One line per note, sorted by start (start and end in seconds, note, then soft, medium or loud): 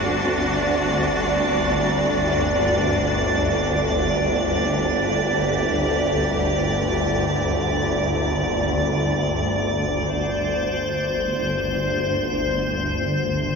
0.00 10.00 G1 medium
0.00 9.99 D2 medium
0.00 10.00 G3 medium
0.00 10.00 C4 medium
0.00 10.01 D4 medium
0.00 4.77 F#4 medium
0.00 10.00 D5 medium
4.46 9.99 G4 medium
9.99 13.55 G1 medium
9.99 13.55 D2 medium
9.99 13.55 C5 medium